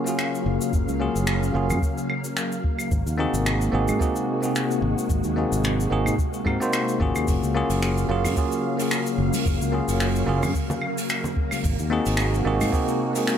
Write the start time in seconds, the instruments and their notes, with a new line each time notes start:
Already playing: string machine C#3 F#3 A#3 F5
0.04 tine electric piano A#3 C#4 F4 F#4, cabasa
0.09 tine electric piano G#4
0.19 finger snap, cabasa
0.35 cabasa
0.46 fretless electric bass F#1
0.61 cabasa
0.73 fretless electric bass F#1, kick, cabasa
0.88 fretless electric bass C#2, cabasa
0.99 tine electric piano A#3 C#4 F4 F#4 G#4
1.16 fretless electric bass F#1, cabasa
1.27 finger snap, cabasa
1.43 cabasa
1.54 fretless electric bass F#1, tine electric piano A#3 C#4 F4 F#4 G#4
1.70 fretless electric bass F#2, cabasa, claves
1.82 kick, cabasa
1.98 cabasa
2.10 claves
2.24 cabasa
2.37 finger snap, cabasa
2.52 cabasa
2.64 kick
2.79 cabasa, claves
2.91 fretless electric bass G#1, string machine C3 G#3 F#4, kick, cabasa
3.06 fretless electric bass D#2, cabasa
3.18 tine electric piano A#3 C4 D#4 F#4 G#4
3.34 fretless electric bass G#1, cabasa
3.46 finger snap, cabasa
3.61 cabasa
3.72 fretless electric bass G#1, tine electric piano A#3 C4 D#4 F#4 G#4
3.88 fretless electric bass G#2, cabasa, claves
3.99 tine electric piano A#3 C4 D#4 F#4 G#4, kick, cabasa
4.16 cabasa
4.41 tine electric piano A#3 C4 D#4 F#4, cabasa
4.45 tine electric piano G#4
4.56 finger snap, cabasa
4.71 cabasa
4.82 fretless electric bass G#1
4.98 cabasa
5.10 fretless electric bass G#1, kick, cabasa
5.24 fretless electric bass D#2, cabasa
5.36 tine electric piano A#3 C4 D#4 F#4 G#4
5.52 fretless electric bass G#1, cabasa
5.64 finger snap, cabasa
5.80 cabasa
5.90 fretless electric bass G#1, tine electric piano A#3 C4 D#4 F#4 G#4
6.06 fretless electric bass G#2, cabasa, claves
6.19 kick, cabasa
6.34 cabasa
6.45 fretless electric bass G#2, tine electric piano A#3 C4 D#4 F#4 A#4, kick, claves
6.60 tine electric piano A#3 C4 D#4 F#4 C5, cabasa
6.73 finger snap, cabasa
6.88 cabasa
7.00 fretless electric bass G#1, tine electric piano A#3 C#4 F4 F#4 G#4, kick
7.15 fretless electric bass D#2, cabasa, claves
7.27 fretless electric bass F#1, string machine C#3 F#3 A#3 F5, kick, open hi-hat, cabasa
7.43 fretless electric bass C#2, cabasa
7.55 tine electric piano A#3 C#4 F4 F#4 G#4
7.70 fretless electric bass F#1, open hi-hat, cabasa
7.82 finger snap, open hi-hat, cabasa
7.97 cabasa
8.09 fretless electric bass F#1, tine electric piano A#3 C#4 F4 F#4 G#4
8.24 fretless electric bass F#2, open hi-hat, high conga, cabasa, claves
8.36 tine electric piano A#3 C#4 F4 F#4 G#4, kick, open hi-hat, cabasa
8.52 cabasa
8.77 tine electric piano A#3 C#4 F4 F#4, open hi-hat, cabasa
8.82 tine electric piano G#4
8.91 finger snap, cabasa
9.06 cabasa
9.18 fretless electric bass F#1
9.33 open hi-hat, high conga, cabasa
9.46 fretless electric bass F#1, kick, open hi-hat, cabasa
9.61 fretless electric bass C#2, cabasa
9.72 tine electric piano A#3 C#4 F4 F#4 G#4
9.88 fretless electric bass F#1, open hi-hat, cabasa
10.00 finger snap, open hi-hat, cabasa
10.16 cabasa
10.26 fretless electric bass F#1, tine electric piano A#3 C#4 F4 F#4 G#4
10.43 fretless electric bass F#2, open hi-hat, high conga, low conga, cabasa, claves
10.55 kick, open hi-hat, cabasa
10.70 low conga, cabasa
10.82 claves
10.98 open hi-hat, cabasa
11.09 finger snap, open hi-hat, cabasa
11.24 low conga, cabasa
11.37 kick
11.51 open hi-hat, high conga, cabasa, claves
11.64 fretless electric bass G#1, string machine C3 G#3 F#4, kick, open hi-hat, cabasa
11.79 fretless electric bass D#2, cabasa
11.90 tine electric piano A#3 C4 D#4 F#4 G#4
12.06 fretless electric bass G#1, open hi-hat, cabasa
12.17 finger snap, open hi-hat, cabasa
12.34 cabasa
12.45 fretless electric bass G#1, tine electric piano A#3 C4 D#4 F#4 G#4
12.61 fretless electric bass G#2, open hi-hat, high conga, cabasa, claves
12.72 tine electric piano A#3 C4 D#4 F#4 G#4, kick, open hi-hat, cabasa
12.88 cabasa
13.13 tine electric piano A#3 C4 D#4 F#4, open hi-hat, cabasa
13.18 tine electric piano G#4
13.27 finger snap, open hi-hat, cabasa